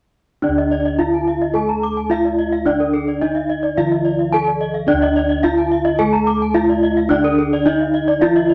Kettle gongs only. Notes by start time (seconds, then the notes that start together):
0.43 D4
0.48 D2
0.99 D#4
2.10 D#4
2.66 D4
3.21 D#4
3.77 D3
4.32 D#4
4.87 D4
4.92 D2
5.43 D#4
6.55 D#4
7.10 D4
7.66 D#4
8.22 D3